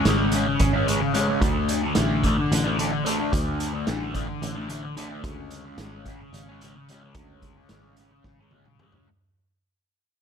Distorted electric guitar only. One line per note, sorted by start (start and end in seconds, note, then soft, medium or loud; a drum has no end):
0.06 0.32 C#3 medium
0.06 0.34 G#3 loud
0.06 0.35 C#4 medium
0.33 0.74 C#3 medium
0.33 0.46 G#3 medium
0.33 0.46 C#4 medium
0.47 muted distorted electric guitar stroke medium
0.73 0.88 G#3 medium
0.73 0.89 C#4 medium
0.88 1.12 C#3 medium
0.88 1.01 G#3 medium
0.88 1.00 C#4 medium
1.01 muted distorted electric guitar stroke soft
1.14 1.40 C#3 medium
1.14 1.29 G#3 medium
1.14 1.27 C#4 loud
1.28 1.42 G#3 medium
1.28 1.40 C#4 medium
1.41 1.96 D3 loud
1.41 1.84 A3 loud
1.41 1.82 D4 loud
1.82 1.97 A3 medium
1.82 1.98 D4 medium
1.96 2.23 D3 loud
1.96 2.24 A3 medium
1.96 2.25 D4 loud
2.24 2.65 D3 medium
2.24 2.38 A3 medium
2.24 2.37 D4 medium
2.38 muted distorted electric guitar stroke medium
2.64 2.78 A3 medium
2.64 2.79 D4 medium
2.78 3.04 D3 medium
2.78 2.92 A3 medium
2.78 2.91 D4 medium
2.92 muted distorted electric guitar stroke soft
3.05 3.31 D3 medium
3.05 3.20 A3 loud
3.05 3.18 D4 medium
3.19 3.32 A3 medium
3.19 3.33 D4 medium
3.32 3.86 D3 medium
3.32 3.74 A3 loud
3.32 3.72 D4 loud
3.73 3.87 A3 medium
3.73 3.88 D4 medium
3.87 4.13 D3 medium
3.87 4.14 A3 loud
3.87 4.15 D4 loud
4.14 4.55 D3 medium
4.14 4.28 A3 medium
4.14 4.27 D4 medium
4.28 muted distorted electric guitar stroke medium
4.55 4.69 A3 medium
4.55 4.70 D4 medium
4.69 4.96 D3 medium
4.69 4.84 A3 medium
4.69 4.83 D4 medium
4.84 muted distorted electric guitar stroke soft
4.97 5.22 D3 medium
4.97 5.10 A3 loud
4.97 5.08 D4 medium
5.09 5.23 A3 medium
5.09 5.22 D4 medium
5.23 5.78 C#3 loud
5.23 5.67 G#3 loud
5.23 5.65 C#4 loud
5.65 5.80 G#3 medium
5.65 5.80 C#4 medium
5.79 6.06 C#3 loud
5.79 6.08 G#3 medium
5.79 6.09 C#4 loud
6.07 6.47 C#3 medium
6.07 6.22 G#3 medium
6.07 6.21 C#4 medium
6.21 muted distorted electric guitar stroke medium
6.48 6.62 G#3 medium
6.48 6.63 C#4 medium
6.62 6.88 C#3 medium
6.62 6.77 G#3 medium
6.62 6.76 C#4 medium
6.76 muted distorted electric guitar stroke soft
6.89 7.15 C#3 medium
6.89 7.05 G#3 medium
6.89 7.02 C#4 loud
7.03 7.16 G#3 medium
7.03 7.17 C#4 medium
7.16 7.70 C#3 loud
7.16 7.58 G#3 loud
7.16 7.56 C#4 loud
7.57 7.72 G#3 medium
7.57 7.72 C#4 medium
7.72 7.97 C#3 medium
7.72 7.98 G#3 medium
7.72 7.99 C#4 loud
7.98 8.39 C#3 medium
7.98 8.12 G#3 medium
7.98 8.11 C#4 medium
8.12 muted distorted electric guitar stroke medium
8.40 8.53 G#3 medium
8.40 8.53 C#4 medium
8.53 8.79 C#3 medium
8.53 8.67 G#3 medium
8.53 8.66 C#4 medium
8.68 muted distorted electric guitar stroke soft
8.80 9.06 C#3 medium
8.80 8.95 G#3 medium
8.80 8.93 C#4 medium
8.95 9.07 G#3 medium
8.95 9.06 C#4 medium